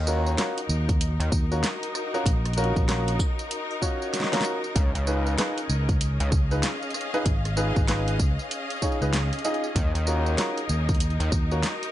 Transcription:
Already playing: D#2 D#4
0.07 C#4 F4 F#4 A#4, tambourine
0.23 F#4, tambourine
0.38 C#4 F4 F#4 A#4, snare, closed hi-hat, tambourine
0.57 A#4, closed hi-hat, tambourine
0.69 D#2, tambourine
0.89 kick, closed hi-hat, tambourine
1.01 closed hi-hat, tambourine
1.20 D#2, closed hi-hat, tambourine
1.32 D#2, kick, tambourine
1.51 C#4 F4 F#4 A#4, tambourine
1.64 snare, closed hi-hat, tambourine
1.83 closed hi-hat, tambourine
1.95 cross-stick, tambourine
2.14 C#4 F4 F#4 A#4, tambourine
2.26 A#1, kick, closed hi-hat, tambourine
2.45 cross-stick, closed hi-hat, tambourine
2.53 C#4 F4 F#4 A#4, closed hi-hat
2.58 tambourine
2.64 closed hi-hat
2.76 A#1, kick, tambourine
2.88 C#4 F4 F#4 A#4, snare, closed hi-hat, tambourine
3.08 closed hi-hat, tambourine
3.19 kick, tambourine
3.39 closed hi-hat, tambourine
3.51 closed hi-hat, tambourine
3.71 tambourine
3.82 C#4 F4 F#4 C#5, kick, tambourine
4.02 tambourine
4.14 snare, closed hi-hat, tambourine
4.20 snare
4.24 snare
4.32 C#4 F4 F#4 A#4, snare, closed hi-hat, tambourine
4.41 snare, tambourine
4.64 tambourine
4.75 C#2 C#4, kick, closed hi-hat, tambourine
4.95 C#2, closed hi-hat, tambourine
5.07 D#4 F4 G#4 B4, tambourine
5.26 tambourine
5.32 G#4
5.38 D#4 F4 G#4 B4, snare, closed hi-hat, tambourine
5.58 closed hi-hat, tambourine
5.70 C#2, tambourine
5.89 D#5, kick, closed hi-hat, tambourine
6.01 closed hi-hat, tambourine
6.20 C#2, closed hi-hat, tambourine
6.32 C#2, kick, tambourine
6.39 F5
6.51 D#4 F4 G#4 B4, tambourine
6.63 snare, closed hi-hat, tambourine
6.83 closed hi-hat, tambourine
6.90 cross-stick, closed hi-hat, tambourine
7.01 closed hi-hat
7.14 D#4 F4 G#4 B4, tambourine
7.26 G#1, kick, closed hi-hat, tambourine
7.45 cross-stick, closed hi-hat, tambourine
7.57 D#4 F4 G#4 B4, cross-stick, tambourine
7.64 cross-stick
7.67 cross-stick
7.76 G#1, kick, tambourine
7.88 D#4 F4 G#4 B4, snare, closed hi-hat, tambourine
8.08 closed hi-hat, tambourine
8.19 C#2, kick, tambourine
8.39 tambourine
8.51 closed hi-hat, tambourine
8.70 closed hi-hat, tambourine
8.76 tambourine
8.82 D#4 F4 G#4 C#5, kick, tambourine
8.92 tambourine
9.01 C#2 D#4 F4 G#4 B4, tambourine
9.13 snare, closed hi-hat, tambourine
9.33 closed hi-hat, tambourine
9.39 closed hi-hat
9.45 D#4 F4 G#4 D#5, closed hi-hat, tambourine
9.54 closed hi-hat
9.64 tambourine
9.76 D#2 D#4, kick, closed hi-hat, tambourine
9.95 D#2 A#4, closed hi-hat, tambourine
10.07 C#4 F4 F#4 A#4, tambourine
10.26 tambourine
10.38 C#4 F4 F#4 A#4, snare, closed hi-hat, tambourine
10.58 closed hi-hat, tambourine
10.69 D#2, tambourine
10.89 kick, closed hi-hat, tambourine
10.95 closed hi-hat
11.00 closed hi-hat, tambourine
11.10 closed hi-hat
11.20 D#2, closed hi-hat, tambourine
11.30 D#2 F#4, kick, tambourine
11.51 C#4 F4 F#4 A#4, tambourine
11.63 snare, closed hi-hat, tambourine
11.83 closed hi-hat, tambourine

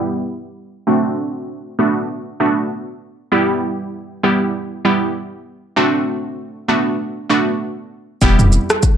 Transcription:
Already playing: G3 B3 E4 G4
0.87 A3 C4 D4 F#4
1.79 A3 B3 D4 F#4
2.40 A3 B3 D4 F#4
3.32 G3 B3 E4 G4
4.23 G3 B3 E4 G4
4.85 G3 B3 E4 G4
5.76 A3 C4 D4 F#4
6.68 A3 B3 D4 F#4
7.30 A3 B3 D4 F#4
8.22 E1 G3 B3 E4 G4, kick, shaker
8.39 mid tom, shaker
8.52 shaker
8.70 cross-stick, shaker
8.83 kick, shaker

